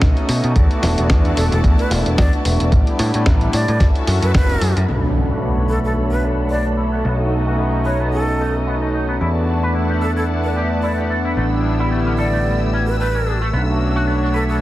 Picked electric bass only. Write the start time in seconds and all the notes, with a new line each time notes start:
0.02 B1
0.29 B2
0.44 B2
0.56 E2
0.83 E1
0.98 E1
1.10 E2
1.37 E1
1.52 E1
1.64 E2
1.91 E1
2.06 E1
2.18 E2
2.45 E1
2.60 E1
2.72 A1
2.99 A2
3.15 A2
3.26 A1
3.54 A2
3.68 A2
3.80 F#1
4.07 F#2
4.22 F#2
4.34 F#1
4.61 F#2
4.76 F#2
4.89 B1
7.05 B1
9.21 E2
11.37 A1
13.53 B1